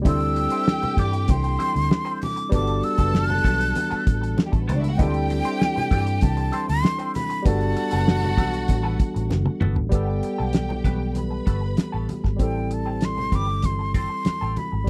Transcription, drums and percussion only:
0.05 kick, closed hi-hat, muted conga, low conga
0.20 closed hi-hat
0.36 closed hi-hat
0.50 closed hi-hat
0.68 snare, high conga
0.83 closed hi-hat, low conga
0.97 kick, closed hi-hat, high conga
1.13 closed hi-hat
1.28 kick, closed hi-hat, muted conga, high conga
1.44 closed hi-hat
1.60 closed hi-hat, high conga
1.76 closed hi-hat
1.91 snare, muted conga, high conga
2.06 closed hi-hat
2.22 open hi-hat, muted conga, high conga, low conga
2.37 closed hi-hat
2.52 kick, closed hi-hat, muted conga, low conga
2.67 closed hi-hat
2.83 closed hi-hat, muted conga
2.98 kick, closed hi-hat
3.15 snare, muted conga, high conga
3.30 low conga
3.44 kick, closed hi-hat, high conga
3.61 closed hi-hat
3.75 closed hi-hat, muted conga, high conga
3.91 closed hi-hat
4.07 kick, closed hi-hat, muted conga, high conga
4.23 closed hi-hat
4.38 snare, muted conga, high conga
4.53 kick, closed hi-hat
4.69 closed hi-hat, muted conga, high conga, low conga
4.84 closed hi-hat
4.99 kick, closed hi-hat, muted conga, low conga
5.14 closed hi-hat
5.30 closed hi-hat, muted conga
5.44 closed hi-hat
5.62 snare, muted conga, high conga
5.77 low conga
5.91 kick, closed hi-hat, muted conga, high conga
6.07 closed hi-hat
6.21 kick, closed hi-hat, muted conga, high conga
6.37 closed hi-hat
6.53 closed hi-hat, high conga
6.69 closed hi-hat
6.84 snare, muted conga, high conga
6.99 closed hi-hat
7.15 closed hi-hat, muted conga, high conga, low conga
7.30 closed hi-hat
7.46 kick, closed hi-hat, muted conga, low conga
7.61 closed hi-hat
7.77 closed hi-hat, muted conga
7.91 closed hi-hat
8.08 snare, high conga
8.24 low conga
8.37 kick, closed hi-hat, high conga
8.53 closed hi-hat
8.68 kick, closed hi-hat, muted conga, high conga
9.00 kick, closed hi-hat, high conga
9.16 closed hi-hat
9.31 snare, muted conga, high conga
9.46 high tom
9.61 mid tom, muted conga, high conga, low conga
9.76 floor tom
9.92 kick, closed hi-hat
10.23 closed hi-hat, muted conga
10.53 snare, closed hi-hat, high conga
10.70 low conga
10.84 kick, closed hi-hat, muted conga, high conga
11.15 closed hi-hat, high conga
11.47 kick, closed hi-hat, high conga
11.77 snare, closed hi-hat, muted conga, high conga
12.09 closed hi-hat, muted conga, high conga, low conga
12.24 kick, snare
12.39 kick, closed hi-hat, muted conga
12.71 closed hi-hat
13.01 snare, closed hi-hat, high conga
13.18 low conga
13.32 kick, closed hi-hat, muted conga, high conga
13.62 kick, closed hi-hat, muted conga, high conga
13.94 kick, closed hi-hat, muted conga, high conga
14.25 snare, closed hi-hat, muted conga, high conga
14.56 closed hi-hat, muted conga, high conga, low conga

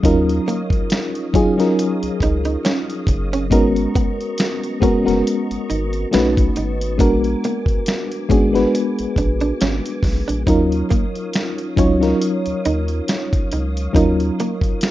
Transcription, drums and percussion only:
0.04 kick, closed hi-hat
0.29 closed hi-hat
0.49 closed hi-hat
0.70 kick, closed hi-hat
0.90 finger snap, snare, closed hi-hat
1.15 closed hi-hat
1.34 kick, closed hi-hat
1.60 snare, closed hi-hat
1.79 closed hi-hat
2.03 closed hi-hat
2.20 kick, closed hi-hat
2.45 closed hi-hat
2.65 finger snap, snare, closed hi-hat
2.90 closed hi-hat
3.07 kick, closed hi-hat
3.33 closed hi-hat
3.51 kick, closed hi-hat
3.76 closed hi-hat
3.95 kick, closed hi-hat
4.21 closed hi-hat
4.38 finger snap, snare, closed hi-hat
4.64 closed hi-hat
4.82 kick, closed hi-hat
5.08 snare, closed hi-hat
5.27 closed hi-hat
5.51 closed hi-hat
5.70 closed hi-hat
5.93 closed hi-hat
6.13 finger snap, snare, closed hi-hat
6.37 kick, closed hi-hat
6.56 closed hi-hat
6.81 closed hi-hat
6.99 kick, closed hi-hat
7.24 closed hi-hat
7.44 closed hi-hat
7.66 kick, closed hi-hat
7.86 finger snap, snare, closed hi-hat
8.12 closed hi-hat
8.30 kick, closed hi-hat
8.55 snare, closed hi-hat
8.75 closed hi-hat
8.99 closed hi-hat
9.16 kick, closed hi-hat
9.41 closed hi-hat
9.61 finger snap, snare, closed hi-hat
9.86 closed hi-hat
10.03 kick, snare, open hi-hat
10.29 closed hi-hat
10.47 kick, closed hi-hat
10.72 closed hi-hat
10.91 kick, closed hi-hat
11.15 closed hi-hat
11.33 finger snap, snare, closed hi-hat
11.58 closed hi-hat
11.77 kick, closed hi-hat
12.03 snare, closed hi-hat
12.22 closed hi-hat
12.46 closed hi-hat
12.65 closed hi-hat
12.88 closed hi-hat
13.08 finger snap, snare, closed hi-hat
13.33 kick, closed hi-hat
13.52 closed hi-hat
13.77 closed hi-hat
13.95 kick, closed hi-hat
14.20 closed hi-hat
14.40 closed hi-hat
14.61 kick, closed hi-hat
14.81 finger snap, snare, closed hi-hat

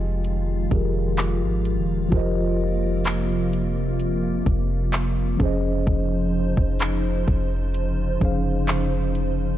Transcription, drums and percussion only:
0.24 closed hi-hat
0.71 kick, closed hi-hat
1.18 clap, closed hi-hat
1.65 closed hi-hat
2.12 kick, closed hi-hat
3.05 clap, closed hi-hat
3.53 closed hi-hat
3.99 closed hi-hat
4.46 kick, closed hi-hat
4.93 clap, closed hi-hat
5.40 kick, closed hi-hat
5.87 kick, closed hi-hat
6.57 kick
6.79 clap, closed hi-hat
7.28 kick, closed hi-hat
7.74 closed hi-hat
8.21 kick, closed hi-hat
8.68 clap, closed hi-hat
9.15 closed hi-hat

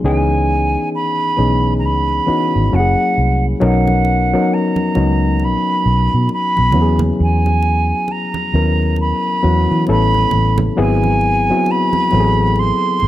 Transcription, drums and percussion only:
3.61 muted conga
3.88 high conga
4.05 muted conga
4.76 high conga
4.95 muted conga
5.40 muted conga
6.29 muted conga
6.57 high conga
6.72 muted conga, low conga
6.99 high conga, low conga
7.46 high conga
7.62 muted conga
8.08 muted conga
8.34 high conga
8.96 muted conga
9.87 muted conga
10.14 high conga
10.31 muted conga, low conga
10.58 high conga, low conga
11.03 high conga
11.21 muted conga
11.66 muted conga
11.93 high conga
12.11 muted conga
12.56 muted conga
13.00 muted conga

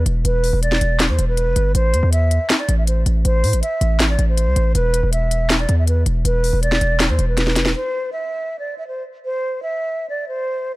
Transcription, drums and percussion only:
0.06 closed hi-hat
0.25 closed hi-hat
0.44 open hi-hat
0.63 closed hi-hat
0.72 snare
0.81 closed hi-hat
1.00 snare, clap, closed hi-hat
1.19 closed hi-hat
1.37 closed hi-hat
1.56 closed hi-hat
1.75 closed hi-hat
1.94 closed hi-hat
2.13 closed hi-hat
2.31 closed hi-hat
2.50 snare, clap, closed hi-hat
2.69 closed hi-hat
2.87 closed hi-hat
3.06 closed hi-hat
3.25 closed hi-hat
3.44 closed hi-hat, open hi-hat
3.53 closed hi-hat
3.63 closed hi-hat
3.81 closed hi-hat
4.00 snare, clap, closed hi-hat
4.19 closed hi-hat
4.38 closed hi-hat
4.56 closed hi-hat
4.75 closed hi-hat
4.94 closed hi-hat
5.13 closed hi-hat
5.31 closed hi-hat
5.50 snare, clap, closed hi-hat
5.69 closed hi-hat
5.87 closed hi-hat
6.06 closed hi-hat
6.25 closed hi-hat
6.44 open hi-hat
6.63 closed hi-hat
6.72 snare
6.81 closed hi-hat
7.00 snare, clap, closed hi-hat
7.19 closed hi-hat
7.37 snare, closed hi-hat
7.47 snare
7.56 snare, closed hi-hat
7.65 snare

